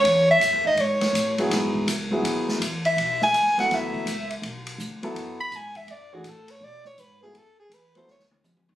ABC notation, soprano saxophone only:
X:1
M:4/4
L:1/8
Q:"Swing" 1/4=164
K:Bdor
V:1 name="Soprano saxophone"
c e2 ^d c3 z | z6 z e- | e g2 f e3 z | z4 z b g e |
d F A c d c B G | A G B ^B c z3 |]